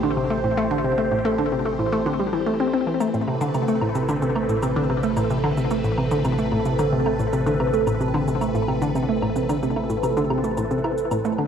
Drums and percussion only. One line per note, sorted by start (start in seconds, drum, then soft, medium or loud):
3.01 cabasa medium
3.01 low woodblock medium
3.14 cabasa soft
3.28 low woodblock soft
3.41 cabasa medium
3.55 cabasa medium
3.55 low woodblock medium
3.68 cabasa soft
3.81 low woodblock medium
3.95 cabasa medium
4.09 cabasa medium
4.09 low woodblock soft
4.22 cabasa soft
4.36 low woodblock medium
4.49 cabasa medium
4.63 cabasa medium
4.63 low woodblock medium
4.90 low woodblock soft
5.03 cabasa medium
5.17 cabasa medium
5.17 low woodblock medium
5.30 cabasa soft
5.44 low woodblock medium
5.57 cabasa medium
5.71 cabasa medium
5.71 low woodblock soft
5.84 cabasa soft
5.98 low woodblock medium
6.11 cabasa soft
6.25 cabasa medium
6.25 low woodblock medium
6.38 cabasa soft
6.52 low woodblock soft
6.65 cabasa medium
6.79 cabasa medium
6.79 low woodblock medium
7.06 low woodblock medium
7.19 cabasa medium
7.33 cabasa medium
7.33 low woodblock soft
7.47 cabasa soft
7.60 low woodblock medium
7.74 cabasa soft
7.87 cabasa medium
7.87 low woodblock medium
8.01 cabasa soft
8.14 low woodblock soft
8.28 cabasa soft
8.41 cabasa medium
8.41 low woodblock medium
8.55 cabasa soft
8.68 low woodblock medium
8.82 cabasa medium
8.95 cabasa medium
8.95 low woodblock soft
9.22 low woodblock medium
9.36 cabasa medium
9.49 cabasa medium
9.49 low woodblock medium
9.63 cabasa soft
9.76 low woodblock soft
9.90 cabasa medium
10.03 cabasa medium
10.03 low woodblock medium
10.17 cabasa soft
10.30 low woodblock medium
10.44 cabasa soft
10.57 cabasa medium
10.57 low woodblock soft
10.71 cabasa soft
10.84 low woodblock medium
10.98 cabasa medium
11.11 cabasa medium
11.11 low woodblock medium
11.25 cabasa soft
11.38 low woodblock soft